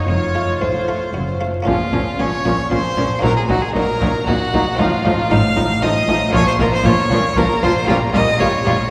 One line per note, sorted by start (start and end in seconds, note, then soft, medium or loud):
0.07 0.57 F1 medium
0.07 0.57 F2 medium
0.07 0.58 F2 soft
0.07 1.47 F4 medium
0.07 0.60 A#4 medium
0.07 0.63 C#5 medium
0.07 0.60 C#5 medium
0.35 0.73 A3 soft
0.35 0.73 F4 soft
0.60 1.10 A1 medium
0.60 1.10 A2 medium
0.60 1.10 A2 soft
0.60 1.41 A4 soft
0.60 1.41 C5 medium
0.60 1.39 C5 soft
0.88 1.07 A3 soft
0.88 1.27 F4 soft
1.13 1.63 F#1 medium
1.13 1.63 F#2 medium
1.13 1.63 F#2 soft
1.41 1.60 A3 soft
1.41 1.60 F4 soft
1.62 3.17 A#3 soft
1.62 3.18 C#4 soft
1.62 3.18 F4 medium
1.67 1.75 A#1 medium
1.67 1.75 A#2 medium
1.67 1.90 A#2 medium
1.67 1.75 F3 medium
1.67 1.75 C#4 medium
1.67 2.21 F4 medium
1.67 2.16 F5 medium
1.92 2.01 A#1 medium
1.92 2.01 A#2 medium
1.92 2.17 A#2 medium
1.92 2.01 F3 medium
1.92 2.00 C#4 medium
2.18 2.27 A#1 medium
2.18 2.27 A#2 medium
2.18 2.43 A#2 medium
2.18 2.28 F3 medium
2.18 2.26 C#4 medium
2.18 2.71 C#5 medium
2.18 2.71 C#6 loud
2.45 2.53 A#1 medium
2.45 2.69 A#2 medium
2.45 2.53 A#2 medium
2.45 2.53 F3 medium
2.45 2.53 C#4 medium
2.71 2.79 A#1 medium
2.71 2.79 A#2 medium
2.71 2.95 A#2 medium
2.71 2.80 F3 medium
2.71 2.79 C#4 medium
2.71 3.23 C5 medium
2.71 3.23 C6 loud
2.97 3.05 A#1 medium
2.97 3.05 A#2 medium
2.97 3.21 A#2 medium
2.97 3.05 F3 medium
2.97 3.05 C#4 medium
3.19 4.73 A#3 soft
3.19 4.74 D#4 medium
3.19 3.31 D#4 medium
3.19 4.75 F#4 medium
3.23 3.31 A#1 medium
3.23 3.31 A#2 medium
3.23 3.47 A#2 medium
3.23 3.31 F#3 medium
3.23 3.36 A#4 medium
3.23 3.36 A#5 loud
3.37 3.42 G#4 medium
3.37 3.50 G#5 medium
3.49 3.57 A#1 medium
3.49 3.57 A#2 medium
3.49 3.73 A#2 medium
3.49 3.57 F#3 medium
3.49 3.57 D#4 medium
3.49 3.63 F#4 medium
3.49 3.62 F#5 loud
3.62 3.74 G#4 medium
3.62 3.68 G#5 medium
3.75 3.83 A#1 medium
3.75 3.83 A#2 medium
3.75 3.99 A#2 medium
3.75 3.83 F#3 medium
3.75 3.83 D#4 medium
3.75 4.26 A#4 medium
3.75 4.26 A#5 loud
4.01 4.09 A#1 medium
4.01 4.09 A#2 medium
4.01 4.25 A#2 medium
4.01 4.09 F#3 medium
4.01 4.09 D#4 medium
4.27 4.35 A#1 medium
4.27 4.35 A#2 medium
4.27 4.51 A#2 medium
4.27 4.35 F#3 medium
4.27 4.35 D#4 medium
4.27 4.80 F#4 medium
4.27 4.79 F#5 loud
4.53 4.61 A#1 medium
4.53 4.62 A#2 medium
4.53 4.77 A#2 medium
4.53 4.62 F#3 medium
4.53 4.62 D#4 medium
4.75 4.87 A1 medium
4.75 6.28 C4 medium
4.75 6.29 D#4 medium
4.75 6.29 F4 medium
4.75 5.32 F4 medium
4.79 4.87 A2 medium
4.79 5.03 A2 medium
4.79 4.87 F3 medium
4.79 4.87 D#4 medium
4.79 5.31 F5 loud
5.04 5.13 A1 medium
5.04 5.13 A2 medium
5.04 5.29 A2 medium
5.04 5.13 F3 medium
5.04 5.12 D#4 medium
5.30 5.39 A1 medium
5.30 5.54 A2 medium
5.30 5.39 A2 medium
5.30 5.38 F3 medium
5.30 5.38 D#4 medium
5.30 5.84 F5 loud
5.30 5.81 F6 loud
5.56 5.64 A1 medium
5.56 5.65 A2 medium
5.56 5.80 A2 medium
5.56 5.64 F3 medium
5.56 5.64 D#4 medium
5.82 5.90 A1 medium
5.82 6.06 A2 medium
5.82 5.91 A2 medium
5.82 5.90 F3 medium
5.82 5.90 D#4 medium
5.82 6.34 D#5 medium
5.82 6.33 D#6 loud
6.07 6.16 A1 medium
6.07 6.17 A2 medium
6.07 6.32 A2 medium
6.07 6.15 F3 medium
6.07 6.16 D#4 medium
6.30 6.42 A#1 loud
6.30 6.42 A#2 medium
6.30 6.41 F3 medium
6.30 7.83 A#3 medium
6.30 7.83 C#4 medium
6.30 6.41 F4 medium
6.30 7.84 F4 medium
6.30 6.46 C#6 loud
6.34 6.57 A#2 medium
6.34 6.47 C#5 loud
6.47 6.52 C5 medium
6.47 6.60 C6 loud
6.59 6.67 A#1 medium
6.59 6.67 A#2 medium
6.59 6.83 A#2 medium
6.59 6.67 F3 medium
6.59 6.67 F4 medium
6.59 6.66 A#4 loud
6.59 6.73 A#5 loud
6.73 6.87 C5 loud
6.73 6.79 C6 loud
6.84 6.93 A#1 medium
6.84 6.93 A#2 medium
6.84 7.09 A#2 medium
6.84 6.92 F3 medium
6.84 6.93 F4 medium
6.84 7.39 C#5 loud
6.84 7.36 C#6 loud
7.10 7.19 A#1 medium
7.10 7.19 A#2 medium
7.10 7.35 A#2 medium
7.10 7.18 F3 medium
7.10 7.18 F4 medium
7.36 7.45 A#1 medium
7.36 7.45 A#2 medium
7.36 7.61 A#2 medium
7.36 7.44 F3 medium
7.36 7.45 F4 medium
7.36 7.64 A#4 medium
7.36 7.63 A#5 loud
7.62 7.70 A#1 medium
7.62 7.72 A#2 medium
7.62 7.87 A#2 medium
7.62 7.71 F3 medium
7.62 7.71 F4 medium
7.62 7.88 C5 loud
7.62 7.72 C6 loud
7.85 7.96 A#1 medium
7.85 7.96 A#2 loud
7.85 7.96 G3 medium
7.85 8.87 A#3 medium
7.85 8.87 F4 medium
7.85 7.96 F4 medium
7.85 8.88 G4 medium
7.89 8.12 A#2 medium
7.89 7.97 A#4 medium
7.89 8.14 A#5 loud
8.14 8.22 A#1 medium
8.14 8.23 A#2 medium
8.14 8.38 A#2 medium
8.14 8.22 G3 medium
8.14 8.22 F4 medium
8.14 8.42 D#5 loud
8.14 8.40 D#6 loud
8.40 8.48 A#1 medium
8.40 8.48 A#2 medium
8.40 8.64 A#2 medium
8.40 8.48 G3 medium
8.40 8.48 F4 medium
8.40 8.90 C#5 medium
8.40 8.90 C#6 loud
8.65 8.73 A#1 medium
8.65 8.74 A#2 medium
8.65 8.90 A#2 medium
8.65 8.73 G3 medium
8.65 8.74 F4 medium